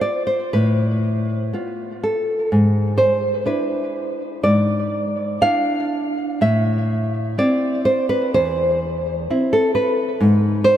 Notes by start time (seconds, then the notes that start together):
Already playing: B3 F4
0.01 D5
0.27 C5
0.53 A2 B4
1.53 B3 F4
2.03 A4
2.52 G#2
2.98 C5
3.46 D4 E4 B4
4.43 G#2 D5
5.42 D4 E4 F5
6.41 A2 E5
7.38 C4 E4 D5
7.85 C5
8.09 B4
8.34 E2 C5
9.30 C4 E4
9.53 A4
9.75 B4
10.21 G#2
10.64 C5